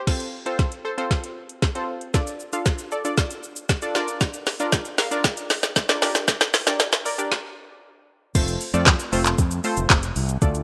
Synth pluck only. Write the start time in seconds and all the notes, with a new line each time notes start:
0.07 C4 F4 A4 C5
0.46 C4 F4 A4 C5
0.85 A4 C5
0.98 C4 F4 A4 C5
1.75 C4 F4 A4 C5
2.14 D4 F4 A4 D5
2.53 D4 F4 A4 F5
2.92 A4 D5
3.05 D4 F4 A4 D5
3.82 D4 F4 A4 D5
3.95 D4 F4 A#4 D5
4.60 D4 F4 A#4 D5
4.98 A#4 F5
5.11 D4 F4 A#4 D5
5.89 D4 F4 A#4 D5
6.02 D4 G4 A#4 D5
6.67 D4 G4 A#4 D5
7.05 A#4 D5
7.18 D4 G4 A#4 D5
8.35 A3 C4 F4 A4 C5
8.74 A3 C4 F4 A4 D5
9.12 A3 C4 F4 A4 C5
9.64 A3 C4 F4 A4 C5
10.42 A3 D4 F4 A4 D5